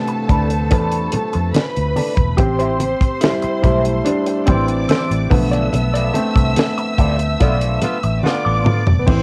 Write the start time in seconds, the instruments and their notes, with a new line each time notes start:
Already playing: grand piano C3 D3 A3 B3 F4, string section A4 A5
0.07 muted clean electric guitar stroke, closed hi-hat
0.29 fingered electric bass D2, clean electric guitar D4 A4 B4, kick, closed hi-hat
0.50 muted clean electric guitar stroke, closed hi-hat
0.70 fingered electric bass E2, clean electric guitar D4 A4 B4, kick, closed hi-hat, muted conga
0.92 closed hi-hat
1.12 muted clean electric guitar stroke, closed hi-hat, muted conga, low conga
1.33 fingered electric bass F2, muted clean electric guitar stroke, closed hi-hat
1.54 string section B4 B5, muted clean electric guitar stroke, muted fingered electric bass stroke, snare, closed hi-hat, high conga
1.76 fingered electric bass D2, closed hi-hat
1.96 clean electric guitar D4 A4 D5, open hi-hat, high conga
2.17 fingered electric bass E1, muted clean electric guitar stroke, kick, closed hi-hat, high conga
2.37 fingered electric bass A1, grand piano C4 G4, string section C5 C6, muted clean electric guitar stroke, kick, closed hi-hat, muted conga
2.59 clean electric guitar E4 G4 C5, closed hi-hat
2.80 muted clean electric guitar stroke, closed hi-hat, muted conga
3.01 muted clean electric guitar stroke, muted fingered electric bass stroke, kick, closed hi-hat
3.21 grand piano G3 E4, snare, closed hi-hat, high conga
3.42 muted clean electric guitar stroke, muted fingered electric bass stroke, closed hi-hat
3.62 fingered electric bass B1, grand piano G3 A3 E4, clean electric guitar E4 G4 C5, kick, closed hi-hat
3.84 muted clean electric guitar stroke, closed hi-hat
4.04 grand piano G3 D4, muted clean electric guitar stroke, closed hi-hat, muted conga
4.26 muted clean electric guitar stroke, closed hi-hat
4.46 fingered electric bass A1, grand piano E3 C4, clean electric guitar E4 G4 C5, string section D5 D6, kick, closed hi-hat, muted conga, low conga
4.68 muted clean electric guitar stroke, closed hi-hat
4.89 clean electric guitar E4 G4 C5, snare, closed hi-hat, high conga
5.11 fingered electric bass A1, closed hi-hat
5.30 fingered electric bass B1, grand piano D3 F3 A3 B3, string section E5 E6, muted clean electric guitar stroke, kick, open hi-hat, high conga
5.51 clean electric guitar F4 A4 D5, closed hi-hat, high conga
5.73 fingered electric bass B1, muted clean electric guitar stroke, closed hi-hat, muted conga
5.94 clean electric guitar F4 A4 D5, closed hi-hat
6.13 grand piano A3 C4, muted clean electric guitar stroke, closed hi-hat, muted conga
6.36 fingered electric bass C2, muted clean electric guitar stroke, kick, closed hi-hat
6.56 snare, closed hi-hat, high conga
6.78 muted clean electric guitar stroke, closed hi-hat
6.98 fingered electric bass D2, clean electric guitar F4 A4 D5, kick, closed hi-hat
7.19 muted clean electric guitar stroke, closed hi-hat
7.40 fingered electric bass B1, horn section D3 B3 F4, clean electric guitar F4 A4 D5, kick, closed hi-hat, muted conga
7.61 closed hi-hat
7.81 horn section D3 B3 F4, muted clean electric guitar stroke, closed hi-hat, muted conga, low conga
8.03 fingered electric bass A1, muted clean electric guitar stroke, closed hi-hat
8.23 horn section D3 B3 F4, string section D5 D6, muted clean electric guitar stroke, muted fingered electric bass stroke, snare, high conga
8.45 fingered electric bass A1, clean electric guitar F4 A4 D5
8.64 muted clean electric guitar stroke, mid tom, high conga
8.86 fingered electric bass E1, muted clean electric guitar stroke, floor tom, high conga
8.99 grand piano B3
9.07 fingered electric bass A1, grand piano E3 C4, string section C5 C6, muted clean electric guitar stroke, kick, crash, muted conga